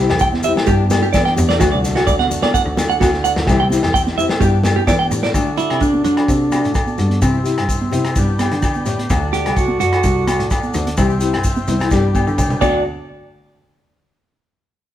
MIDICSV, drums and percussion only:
0, 0, Header, 1, 2, 480
1, 0, Start_track
1, 0, Tempo, 468019
1, 1648, Time_signature, 4, 2, 24, 8
1, 15330, End_track
2, 0, Start_track
2, 0, Title_t, "Drums"
2, 94, Note_on_c, 9, 70, 31
2, 100, Note_on_c, 9, 38, 68
2, 105, Note_on_c, 9, 68, 77
2, 196, Note_off_c, 9, 70, 0
2, 196, Note_on_c, 9, 70, 87
2, 202, Note_off_c, 9, 38, 0
2, 208, Note_off_c, 9, 68, 0
2, 217, Note_on_c, 9, 36, 87
2, 298, Note_off_c, 9, 70, 0
2, 319, Note_off_c, 9, 36, 0
2, 339, Note_on_c, 9, 63, 89
2, 348, Note_on_c, 9, 38, 26
2, 441, Note_on_c, 9, 70, 118
2, 442, Note_off_c, 9, 63, 0
2, 448, Note_on_c, 9, 64, 79
2, 450, Note_off_c, 9, 38, 0
2, 544, Note_off_c, 9, 70, 0
2, 551, Note_off_c, 9, 64, 0
2, 573, Note_on_c, 9, 63, 76
2, 586, Note_on_c, 9, 68, 67
2, 587, Note_on_c, 9, 38, 74
2, 676, Note_off_c, 9, 63, 0
2, 680, Note_on_c, 9, 70, 84
2, 689, Note_off_c, 9, 38, 0
2, 689, Note_off_c, 9, 68, 0
2, 691, Note_on_c, 9, 64, 78
2, 692, Note_on_c, 9, 38, 27
2, 693, Note_on_c, 9, 36, 101
2, 782, Note_off_c, 9, 70, 0
2, 794, Note_off_c, 9, 64, 0
2, 795, Note_off_c, 9, 38, 0
2, 796, Note_off_c, 9, 36, 0
2, 924, Note_on_c, 9, 63, 85
2, 924, Note_on_c, 9, 64, 83
2, 925, Note_on_c, 9, 70, 100
2, 933, Note_on_c, 9, 38, 85
2, 938, Note_on_c, 9, 68, 73
2, 1027, Note_off_c, 9, 63, 0
2, 1027, Note_off_c, 9, 64, 0
2, 1028, Note_off_c, 9, 70, 0
2, 1036, Note_off_c, 9, 38, 0
2, 1040, Note_off_c, 9, 68, 0
2, 1054, Note_on_c, 9, 70, 36
2, 1156, Note_off_c, 9, 70, 0
2, 1163, Note_on_c, 9, 70, 97
2, 1169, Note_on_c, 9, 36, 97
2, 1170, Note_on_c, 9, 38, 80
2, 1173, Note_on_c, 9, 63, 76
2, 1174, Note_on_c, 9, 68, 72
2, 1266, Note_off_c, 9, 70, 0
2, 1272, Note_off_c, 9, 36, 0
2, 1272, Note_off_c, 9, 38, 0
2, 1276, Note_off_c, 9, 63, 0
2, 1276, Note_off_c, 9, 68, 0
2, 1291, Note_on_c, 9, 38, 27
2, 1394, Note_off_c, 9, 38, 0
2, 1401, Note_on_c, 9, 64, 85
2, 1410, Note_on_c, 9, 70, 114
2, 1504, Note_off_c, 9, 64, 0
2, 1513, Note_off_c, 9, 70, 0
2, 1531, Note_on_c, 9, 38, 71
2, 1633, Note_off_c, 9, 38, 0
2, 1641, Note_on_c, 9, 38, 80
2, 1647, Note_on_c, 9, 70, 96
2, 1648, Note_on_c, 9, 36, 92
2, 1649, Note_on_c, 9, 68, 72
2, 1744, Note_off_c, 9, 38, 0
2, 1749, Note_off_c, 9, 70, 0
2, 1750, Note_off_c, 9, 36, 0
2, 1751, Note_off_c, 9, 68, 0
2, 1887, Note_on_c, 9, 38, 29
2, 1893, Note_on_c, 9, 70, 116
2, 1990, Note_off_c, 9, 38, 0
2, 1995, Note_off_c, 9, 70, 0
2, 2010, Note_on_c, 9, 38, 76
2, 2017, Note_on_c, 9, 68, 72
2, 2018, Note_on_c, 9, 70, 34
2, 2112, Note_off_c, 9, 38, 0
2, 2120, Note_off_c, 9, 68, 0
2, 2120, Note_off_c, 9, 70, 0
2, 2125, Note_on_c, 9, 36, 89
2, 2127, Note_on_c, 9, 70, 96
2, 2227, Note_off_c, 9, 36, 0
2, 2230, Note_off_c, 9, 70, 0
2, 2246, Note_on_c, 9, 38, 29
2, 2250, Note_on_c, 9, 63, 84
2, 2348, Note_off_c, 9, 38, 0
2, 2353, Note_off_c, 9, 63, 0
2, 2370, Note_on_c, 9, 70, 121
2, 2372, Note_on_c, 9, 64, 79
2, 2473, Note_off_c, 9, 70, 0
2, 2474, Note_off_c, 9, 64, 0
2, 2485, Note_on_c, 9, 38, 75
2, 2494, Note_on_c, 9, 68, 62
2, 2498, Note_on_c, 9, 63, 81
2, 2588, Note_off_c, 9, 38, 0
2, 2596, Note_off_c, 9, 68, 0
2, 2601, Note_off_c, 9, 63, 0
2, 2604, Note_on_c, 9, 38, 27
2, 2607, Note_on_c, 9, 36, 88
2, 2610, Note_on_c, 9, 64, 73
2, 2613, Note_on_c, 9, 70, 92
2, 2706, Note_off_c, 9, 38, 0
2, 2710, Note_off_c, 9, 36, 0
2, 2713, Note_off_c, 9, 64, 0
2, 2716, Note_off_c, 9, 70, 0
2, 2845, Note_on_c, 9, 38, 79
2, 2845, Note_on_c, 9, 63, 90
2, 2845, Note_on_c, 9, 64, 82
2, 2855, Note_on_c, 9, 70, 110
2, 2857, Note_on_c, 9, 68, 65
2, 2947, Note_off_c, 9, 38, 0
2, 2948, Note_off_c, 9, 63, 0
2, 2948, Note_off_c, 9, 64, 0
2, 2957, Note_off_c, 9, 70, 0
2, 2959, Note_off_c, 9, 68, 0
2, 2983, Note_on_c, 9, 70, 36
2, 3084, Note_on_c, 9, 63, 73
2, 3085, Note_off_c, 9, 70, 0
2, 3087, Note_on_c, 9, 38, 75
2, 3088, Note_on_c, 9, 36, 98
2, 3092, Note_on_c, 9, 68, 74
2, 3100, Note_on_c, 9, 70, 96
2, 3186, Note_off_c, 9, 63, 0
2, 3189, Note_off_c, 9, 38, 0
2, 3190, Note_off_c, 9, 36, 0
2, 3194, Note_off_c, 9, 68, 0
2, 3203, Note_off_c, 9, 70, 0
2, 3214, Note_on_c, 9, 38, 29
2, 3316, Note_off_c, 9, 38, 0
2, 3330, Note_on_c, 9, 70, 106
2, 3432, Note_off_c, 9, 70, 0
2, 3450, Note_on_c, 9, 38, 73
2, 3465, Note_on_c, 9, 70, 34
2, 3552, Note_off_c, 9, 38, 0
2, 3557, Note_on_c, 9, 38, 71
2, 3564, Note_on_c, 9, 36, 105
2, 3564, Note_on_c, 9, 68, 79
2, 3568, Note_off_c, 9, 70, 0
2, 3579, Note_on_c, 9, 70, 82
2, 3660, Note_off_c, 9, 38, 0
2, 3666, Note_off_c, 9, 36, 0
2, 3667, Note_off_c, 9, 68, 0
2, 3681, Note_off_c, 9, 70, 0
2, 3796, Note_on_c, 9, 63, 69
2, 3806, Note_on_c, 9, 38, 27
2, 3818, Note_on_c, 9, 70, 111
2, 3899, Note_off_c, 9, 63, 0
2, 3909, Note_off_c, 9, 38, 0
2, 3920, Note_off_c, 9, 70, 0
2, 3927, Note_on_c, 9, 38, 70
2, 3931, Note_on_c, 9, 68, 69
2, 4030, Note_off_c, 9, 38, 0
2, 4033, Note_off_c, 9, 68, 0
2, 4042, Note_on_c, 9, 36, 82
2, 4057, Note_on_c, 9, 70, 92
2, 4144, Note_off_c, 9, 36, 0
2, 4160, Note_off_c, 9, 70, 0
2, 4172, Note_on_c, 9, 63, 87
2, 4174, Note_on_c, 9, 38, 26
2, 4274, Note_off_c, 9, 63, 0
2, 4276, Note_off_c, 9, 38, 0
2, 4288, Note_on_c, 9, 64, 89
2, 4294, Note_on_c, 9, 70, 115
2, 4391, Note_off_c, 9, 64, 0
2, 4397, Note_off_c, 9, 70, 0
2, 4404, Note_on_c, 9, 38, 78
2, 4412, Note_on_c, 9, 68, 60
2, 4425, Note_on_c, 9, 70, 34
2, 4506, Note_off_c, 9, 38, 0
2, 4514, Note_off_c, 9, 68, 0
2, 4514, Note_on_c, 9, 38, 30
2, 4520, Note_on_c, 9, 36, 95
2, 4527, Note_off_c, 9, 70, 0
2, 4527, Note_on_c, 9, 64, 76
2, 4527, Note_on_c, 9, 70, 86
2, 4617, Note_off_c, 9, 38, 0
2, 4623, Note_off_c, 9, 36, 0
2, 4630, Note_off_c, 9, 64, 0
2, 4630, Note_off_c, 9, 70, 0
2, 4754, Note_on_c, 9, 38, 76
2, 4761, Note_on_c, 9, 63, 82
2, 4761, Note_on_c, 9, 64, 73
2, 4767, Note_on_c, 9, 70, 99
2, 4771, Note_on_c, 9, 68, 73
2, 4856, Note_off_c, 9, 38, 0
2, 4864, Note_off_c, 9, 63, 0
2, 4864, Note_off_c, 9, 64, 0
2, 4869, Note_off_c, 9, 70, 0
2, 4874, Note_off_c, 9, 68, 0
2, 4997, Note_on_c, 9, 38, 69
2, 4999, Note_on_c, 9, 36, 94
2, 5001, Note_on_c, 9, 68, 72
2, 5003, Note_on_c, 9, 63, 82
2, 5006, Note_on_c, 9, 70, 88
2, 5100, Note_off_c, 9, 38, 0
2, 5102, Note_off_c, 9, 36, 0
2, 5103, Note_off_c, 9, 68, 0
2, 5105, Note_off_c, 9, 63, 0
2, 5109, Note_off_c, 9, 70, 0
2, 5237, Note_on_c, 9, 64, 87
2, 5245, Note_on_c, 9, 70, 114
2, 5339, Note_off_c, 9, 64, 0
2, 5348, Note_off_c, 9, 70, 0
2, 5363, Note_on_c, 9, 38, 77
2, 5465, Note_off_c, 9, 38, 0
2, 5479, Note_on_c, 9, 36, 88
2, 5479, Note_on_c, 9, 37, 63
2, 5479, Note_on_c, 9, 42, 51
2, 5484, Note_on_c, 9, 70, 92
2, 5490, Note_on_c, 9, 68, 65
2, 5581, Note_off_c, 9, 37, 0
2, 5581, Note_off_c, 9, 42, 0
2, 5582, Note_off_c, 9, 36, 0
2, 5586, Note_off_c, 9, 70, 0
2, 5592, Note_off_c, 9, 68, 0
2, 5715, Note_on_c, 9, 42, 52
2, 5735, Note_on_c, 9, 70, 71
2, 5818, Note_off_c, 9, 42, 0
2, 5838, Note_off_c, 9, 70, 0
2, 5850, Note_on_c, 9, 37, 64
2, 5850, Note_on_c, 9, 42, 50
2, 5853, Note_on_c, 9, 68, 67
2, 5952, Note_off_c, 9, 37, 0
2, 5952, Note_off_c, 9, 42, 0
2, 5952, Note_on_c, 9, 42, 50
2, 5955, Note_off_c, 9, 68, 0
2, 5959, Note_on_c, 9, 36, 83
2, 5972, Note_on_c, 9, 70, 85
2, 6054, Note_off_c, 9, 42, 0
2, 6062, Note_off_c, 9, 36, 0
2, 6074, Note_off_c, 9, 70, 0
2, 6089, Note_on_c, 9, 63, 78
2, 6192, Note_off_c, 9, 63, 0
2, 6199, Note_on_c, 9, 42, 49
2, 6199, Note_on_c, 9, 64, 74
2, 6208, Note_on_c, 9, 70, 68
2, 6301, Note_off_c, 9, 42, 0
2, 6301, Note_off_c, 9, 64, 0
2, 6310, Note_off_c, 9, 70, 0
2, 6330, Note_on_c, 9, 37, 70
2, 6330, Note_on_c, 9, 42, 52
2, 6330, Note_on_c, 9, 68, 54
2, 6432, Note_off_c, 9, 37, 0
2, 6432, Note_off_c, 9, 42, 0
2, 6433, Note_off_c, 9, 68, 0
2, 6443, Note_on_c, 9, 42, 49
2, 6445, Note_on_c, 9, 36, 85
2, 6451, Note_on_c, 9, 70, 90
2, 6545, Note_off_c, 9, 42, 0
2, 6548, Note_off_c, 9, 36, 0
2, 6554, Note_off_c, 9, 70, 0
2, 6670, Note_on_c, 9, 63, 75
2, 6683, Note_on_c, 9, 70, 65
2, 6687, Note_on_c, 9, 68, 69
2, 6691, Note_on_c, 9, 37, 75
2, 6691, Note_on_c, 9, 42, 49
2, 6772, Note_off_c, 9, 63, 0
2, 6786, Note_off_c, 9, 70, 0
2, 6789, Note_off_c, 9, 68, 0
2, 6794, Note_off_c, 9, 37, 0
2, 6794, Note_off_c, 9, 42, 0
2, 6810, Note_on_c, 9, 70, 27
2, 6820, Note_on_c, 9, 42, 47
2, 6912, Note_off_c, 9, 70, 0
2, 6913, Note_on_c, 9, 64, 72
2, 6916, Note_on_c, 9, 70, 92
2, 6922, Note_off_c, 9, 42, 0
2, 6924, Note_on_c, 9, 36, 87
2, 6924, Note_on_c, 9, 37, 66
2, 6924, Note_on_c, 9, 42, 49
2, 6927, Note_on_c, 9, 68, 61
2, 7015, Note_off_c, 9, 64, 0
2, 7018, Note_off_c, 9, 70, 0
2, 7027, Note_off_c, 9, 36, 0
2, 7027, Note_off_c, 9, 37, 0
2, 7027, Note_off_c, 9, 42, 0
2, 7030, Note_off_c, 9, 68, 0
2, 7042, Note_on_c, 9, 63, 62
2, 7047, Note_on_c, 9, 70, 27
2, 7145, Note_off_c, 9, 63, 0
2, 7149, Note_off_c, 9, 70, 0
2, 7157, Note_on_c, 9, 70, 68
2, 7159, Note_on_c, 9, 64, 80
2, 7171, Note_on_c, 9, 42, 45
2, 7259, Note_off_c, 9, 70, 0
2, 7262, Note_off_c, 9, 64, 0
2, 7273, Note_off_c, 9, 42, 0
2, 7274, Note_on_c, 9, 63, 70
2, 7293, Note_on_c, 9, 42, 44
2, 7377, Note_off_c, 9, 63, 0
2, 7395, Note_off_c, 9, 42, 0
2, 7402, Note_on_c, 9, 70, 94
2, 7404, Note_on_c, 9, 37, 61
2, 7404, Note_on_c, 9, 42, 46
2, 7406, Note_on_c, 9, 36, 82
2, 7408, Note_on_c, 9, 68, 61
2, 7505, Note_off_c, 9, 70, 0
2, 7507, Note_off_c, 9, 37, 0
2, 7507, Note_off_c, 9, 42, 0
2, 7508, Note_off_c, 9, 36, 0
2, 7510, Note_off_c, 9, 68, 0
2, 7644, Note_on_c, 9, 70, 71
2, 7651, Note_on_c, 9, 42, 48
2, 7746, Note_off_c, 9, 70, 0
2, 7754, Note_off_c, 9, 42, 0
2, 7772, Note_on_c, 9, 37, 67
2, 7772, Note_on_c, 9, 42, 46
2, 7774, Note_on_c, 9, 68, 65
2, 7875, Note_off_c, 9, 37, 0
2, 7875, Note_off_c, 9, 42, 0
2, 7877, Note_off_c, 9, 68, 0
2, 7884, Note_on_c, 9, 42, 43
2, 7885, Note_on_c, 9, 36, 77
2, 7892, Note_on_c, 9, 70, 95
2, 7986, Note_off_c, 9, 42, 0
2, 7988, Note_off_c, 9, 36, 0
2, 7994, Note_off_c, 9, 70, 0
2, 8012, Note_on_c, 9, 63, 79
2, 8115, Note_off_c, 9, 63, 0
2, 8118, Note_on_c, 9, 64, 87
2, 8129, Note_on_c, 9, 42, 53
2, 8136, Note_on_c, 9, 70, 68
2, 8220, Note_off_c, 9, 64, 0
2, 8232, Note_off_c, 9, 42, 0
2, 8239, Note_off_c, 9, 70, 0
2, 8252, Note_on_c, 9, 37, 70
2, 8252, Note_on_c, 9, 42, 49
2, 8262, Note_on_c, 9, 70, 27
2, 8264, Note_on_c, 9, 68, 55
2, 8355, Note_off_c, 9, 37, 0
2, 8355, Note_off_c, 9, 42, 0
2, 8364, Note_off_c, 9, 70, 0
2, 8364, Note_on_c, 9, 42, 45
2, 8365, Note_on_c, 9, 70, 86
2, 8367, Note_off_c, 9, 68, 0
2, 8368, Note_on_c, 9, 36, 90
2, 8466, Note_off_c, 9, 42, 0
2, 8468, Note_off_c, 9, 70, 0
2, 8471, Note_off_c, 9, 36, 0
2, 8605, Note_on_c, 9, 63, 87
2, 8606, Note_on_c, 9, 70, 61
2, 8607, Note_on_c, 9, 37, 70
2, 8607, Note_on_c, 9, 42, 55
2, 8620, Note_on_c, 9, 68, 67
2, 8707, Note_off_c, 9, 63, 0
2, 8708, Note_off_c, 9, 70, 0
2, 8710, Note_off_c, 9, 37, 0
2, 8710, Note_off_c, 9, 42, 0
2, 8723, Note_off_c, 9, 68, 0
2, 8731, Note_on_c, 9, 70, 25
2, 8733, Note_on_c, 9, 42, 48
2, 8834, Note_off_c, 9, 70, 0
2, 8835, Note_off_c, 9, 42, 0
2, 8842, Note_on_c, 9, 70, 89
2, 8843, Note_on_c, 9, 64, 69
2, 8847, Note_on_c, 9, 37, 65
2, 8847, Note_on_c, 9, 42, 47
2, 8849, Note_on_c, 9, 36, 78
2, 8860, Note_on_c, 9, 68, 68
2, 8945, Note_off_c, 9, 70, 0
2, 8946, Note_off_c, 9, 64, 0
2, 8949, Note_off_c, 9, 37, 0
2, 8949, Note_off_c, 9, 42, 0
2, 8951, Note_off_c, 9, 36, 0
2, 8963, Note_off_c, 9, 68, 0
2, 8966, Note_on_c, 9, 70, 26
2, 8979, Note_on_c, 9, 63, 61
2, 9068, Note_off_c, 9, 70, 0
2, 9081, Note_off_c, 9, 63, 0
2, 9082, Note_on_c, 9, 70, 69
2, 9085, Note_on_c, 9, 64, 71
2, 9090, Note_on_c, 9, 42, 48
2, 9184, Note_off_c, 9, 70, 0
2, 9187, Note_off_c, 9, 64, 0
2, 9193, Note_off_c, 9, 42, 0
2, 9215, Note_on_c, 9, 63, 62
2, 9223, Note_on_c, 9, 42, 50
2, 9317, Note_off_c, 9, 63, 0
2, 9325, Note_off_c, 9, 42, 0
2, 9329, Note_on_c, 9, 70, 85
2, 9334, Note_on_c, 9, 36, 90
2, 9335, Note_on_c, 9, 37, 67
2, 9335, Note_on_c, 9, 42, 52
2, 9337, Note_on_c, 9, 68, 70
2, 9432, Note_off_c, 9, 70, 0
2, 9436, Note_off_c, 9, 36, 0
2, 9438, Note_off_c, 9, 37, 0
2, 9438, Note_off_c, 9, 42, 0
2, 9439, Note_off_c, 9, 68, 0
2, 9573, Note_on_c, 9, 70, 66
2, 9577, Note_on_c, 9, 42, 52
2, 9675, Note_off_c, 9, 70, 0
2, 9679, Note_off_c, 9, 42, 0
2, 9702, Note_on_c, 9, 37, 70
2, 9702, Note_on_c, 9, 42, 51
2, 9711, Note_on_c, 9, 68, 70
2, 9804, Note_off_c, 9, 37, 0
2, 9804, Note_off_c, 9, 42, 0
2, 9807, Note_on_c, 9, 42, 50
2, 9812, Note_on_c, 9, 36, 83
2, 9814, Note_off_c, 9, 68, 0
2, 9815, Note_on_c, 9, 70, 92
2, 9910, Note_off_c, 9, 42, 0
2, 9915, Note_off_c, 9, 36, 0
2, 9917, Note_off_c, 9, 70, 0
2, 9928, Note_on_c, 9, 63, 85
2, 10031, Note_off_c, 9, 63, 0
2, 10043, Note_on_c, 9, 64, 76
2, 10057, Note_on_c, 9, 70, 67
2, 10058, Note_on_c, 9, 42, 57
2, 10145, Note_off_c, 9, 64, 0
2, 10159, Note_off_c, 9, 70, 0
2, 10161, Note_off_c, 9, 42, 0
2, 10181, Note_on_c, 9, 37, 70
2, 10181, Note_on_c, 9, 42, 51
2, 10191, Note_on_c, 9, 68, 57
2, 10284, Note_off_c, 9, 37, 0
2, 10284, Note_off_c, 9, 42, 0
2, 10290, Note_on_c, 9, 70, 96
2, 10293, Note_off_c, 9, 68, 0
2, 10297, Note_on_c, 9, 36, 87
2, 10298, Note_on_c, 9, 42, 55
2, 10392, Note_off_c, 9, 70, 0
2, 10399, Note_off_c, 9, 36, 0
2, 10400, Note_off_c, 9, 42, 0
2, 10538, Note_on_c, 9, 37, 72
2, 10538, Note_on_c, 9, 42, 59
2, 10539, Note_on_c, 9, 63, 86
2, 10542, Note_on_c, 9, 70, 67
2, 10544, Note_on_c, 9, 68, 72
2, 10641, Note_off_c, 9, 37, 0
2, 10641, Note_off_c, 9, 42, 0
2, 10641, Note_off_c, 9, 63, 0
2, 10645, Note_off_c, 9, 70, 0
2, 10647, Note_off_c, 9, 68, 0
2, 10667, Note_on_c, 9, 42, 48
2, 10769, Note_off_c, 9, 42, 0
2, 10772, Note_on_c, 9, 70, 104
2, 10779, Note_on_c, 9, 36, 82
2, 10779, Note_on_c, 9, 64, 67
2, 10781, Note_on_c, 9, 37, 73
2, 10781, Note_on_c, 9, 42, 54
2, 10789, Note_on_c, 9, 68, 62
2, 10875, Note_off_c, 9, 70, 0
2, 10881, Note_off_c, 9, 36, 0
2, 10882, Note_off_c, 9, 64, 0
2, 10883, Note_off_c, 9, 37, 0
2, 10883, Note_off_c, 9, 42, 0
2, 10891, Note_off_c, 9, 68, 0
2, 10902, Note_on_c, 9, 70, 28
2, 10903, Note_on_c, 9, 63, 65
2, 11004, Note_off_c, 9, 70, 0
2, 11005, Note_off_c, 9, 63, 0
2, 11011, Note_on_c, 9, 70, 78
2, 11021, Note_on_c, 9, 64, 77
2, 11025, Note_on_c, 9, 42, 50
2, 11114, Note_off_c, 9, 70, 0
2, 11123, Note_off_c, 9, 64, 0
2, 11128, Note_off_c, 9, 42, 0
2, 11147, Note_on_c, 9, 42, 50
2, 11147, Note_on_c, 9, 63, 73
2, 11249, Note_off_c, 9, 63, 0
2, 11250, Note_off_c, 9, 42, 0
2, 11251, Note_on_c, 9, 70, 102
2, 11252, Note_on_c, 9, 64, 68
2, 11256, Note_on_c, 9, 68, 66
2, 11258, Note_on_c, 9, 36, 94
2, 11259, Note_on_c, 9, 37, 69
2, 11259, Note_on_c, 9, 42, 50
2, 11353, Note_off_c, 9, 70, 0
2, 11355, Note_off_c, 9, 64, 0
2, 11358, Note_off_c, 9, 68, 0
2, 11361, Note_off_c, 9, 36, 0
2, 11361, Note_off_c, 9, 37, 0
2, 11361, Note_off_c, 9, 42, 0
2, 11382, Note_on_c, 9, 70, 27
2, 11485, Note_off_c, 9, 70, 0
2, 11489, Note_on_c, 9, 70, 78
2, 11499, Note_on_c, 9, 42, 52
2, 11592, Note_off_c, 9, 70, 0
2, 11602, Note_off_c, 9, 42, 0
2, 11624, Note_on_c, 9, 68, 64
2, 11631, Note_on_c, 9, 37, 70
2, 11631, Note_on_c, 9, 42, 52
2, 11727, Note_off_c, 9, 68, 0
2, 11730, Note_on_c, 9, 70, 98
2, 11733, Note_off_c, 9, 37, 0
2, 11733, Note_off_c, 9, 42, 0
2, 11739, Note_on_c, 9, 36, 81
2, 11741, Note_on_c, 9, 42, 44
2, 11832, Note_off_c, 9, 70, 0
2, 11841, Note_off_c, 9, 36, 0
2, 11843, Note_off_c, 9, 42, 0
2, 11862, Note_on_c, 9, 63, 89
2, 11865, Note_on_c, 9, 70, 29
2, 11964, Note_off_c, 9, 63, 0
2, 11968, Note_off_c, 9, 70, 0
2, 11973, Note_on_c, 9, 70, 72
2, 11981, Note_on_c, 9, 63, 78
2, 11981, Note_on_c, 9, 64, 86
2, 11983, Note_on_c, 9, 42, 51
2, 12076, Note_off_c, 9, 70, 0
2, 12084, Note_off_c, 9, 63, 0
2, 12084, Note_off_c, 9, 64, 0
2, 12085, Note_off_c, 9, 42, 0
2, 12099, Note_on_c, 9, 70, 29
2, 12106, Note_on_c, 9, 68, 60
2, 12115, Note_on_c, 9, 37, 74
2, 12115, Note_on_c, 9, 42, 45
2, 12202, Note_off_c, 9, 70, 0
2, 12209, Note_off_c, 9, 68, 0
2, 12210, Note_on_c, 9, 70, 97
2, 12218, Note_off_c, 9, 37, 0
2, 12218, Note_off_c, 9, 42, 0
2, 12219, Note_on_c, 9, 36, 90
2, 12222, Note_on_c, 9, 38, 51
2, 12312, Note_off_c, 9, 70, 0
2, 12321, Note_off_c, 9, 36, 0
2, 12324, Note_off_c, 9, 38, 0
2, 12456, Note_on_c, 9, 63, 81
2, 12459, Note_on_c, 9, 36, 67
2, 12460, Note_on_c, 9, 70, 67
2, 12466, Note_on_c, 9, 68, 65
2, 12559, Note_off_c, 9, 63, 0
2, 12562, Note_off_c, 9, 36, 0
2, 12563, Note_off_c, 9, 70, 0
2, 12568, Note_off_c, 9, 68, 0
2, 12586, Note_on_c, 9, 70, 28
2, 12688, Note_off_c, 9, 70, 0
2, 12697, Note_on_c, 9, 68, 64
2, 12699, Note_on_c, 9, 45, 71
2, 12699, Note_on_c, 9, 64, 74
2, 12701, Note_on_c, 9, 36, 80
2, 12702, Note_on_c, 9, 70, 97
2, 12800, Note_off_c, 9, 68, 0
2, 12801, Note_off_c, 9, 45, 0
2, 12801, Note_off_c, 9, 64, 0
2, 12803, Note_off_c, 9, 36, 0
2, 12805, Note_off_c, 9, 70, 0
2, 12824, Note_on_c, 9, 45, 65
2, 12830, Note_on_c, 9, 70, 25
2, 12927, Note_off_c, 9, 45, 0
2, 12932, Note_off_c, 9, 70, 0
2, 12933, Note_on_c, 9, 68, 92
2, 12938, Note_on_c, 9, 63, 88
2, 12940, Note_on_c, 9, 36, 83
2, 12940, Note_on_c, 9, 49, 72
2, 12941, Note_on_c, 9, 70, 82
2, 13036, Note_off_c, 9, 68, 0
2, 13040, Note_off_c, 9, 63, 0
2, 13043, Note_off_c, 9, 36, 0
2, 13043, Note_off_c, 9, 49, 0
2, 13044, Note_off_c, 9, 70, 0
2, 15330, End_track
0, 0, End_of_file